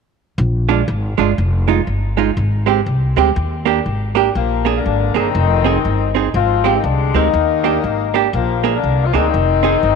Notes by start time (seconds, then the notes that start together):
0.38 A#1
0.69 G#3 D4 F4
0.88 G#1
1.18 G1 G#3 D4 F4
1.38 F1
1.68 G#3 D#4 F4
1.87 G1
2.17 G#3 D#4 F4
2.37 G#1
2.66 G#3 C4 G4
2.86 C2
3.16 D2 G#3 C4 G4
3.36 D#2
3.66 A#3 D4 G4
3.86 G#1
4.15 A#3 D4 G4
4.35 A#1 F3 A#3
4.65 A#3 D4 G#4
4.77 D3 A#3 D4
4.86 G#1
5.14 G1 D#3 A#3 C4 D4 D#4 G#4
5.35 F1
5.64 C4 D#4 G#4
5.85 G1
6.15 C4 D#4 G#4
6.34 G#1 F3 C4 F4
6.64 G#3 C4 G4
6.75 D#3 C4 D#4
6.84 C2 D3 G#3 D4
7.14 D2 D#3 G#3 A#3 C4 D#4 G4
7.34 D#2
7.64 A#3 D4 G4
7.84 G#1
8.14 A#3 D4 G4
8.33 A#1 F3 A#3
8.64 A#3 D4 G#4
8.76 D3 A#3 D4
8.83 C2
9.06 F3 F4
9.14 D2 D#3 A#3 C4 D4 D#4 G#4
9.34 F1
9.63 C4 D#4 G#4
9.83 G1